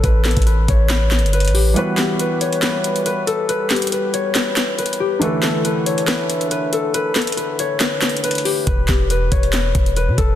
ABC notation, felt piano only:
X:1
M:4/4
L:1/8
Q:1/4=139
K:Edor
V:1 name="Felt piano"
z8 | [E,G,B,FB]8- | [E,G,B,FB]8 | [D,E,A,EA]8- |
[D,E,A,EA]8 | z8 |]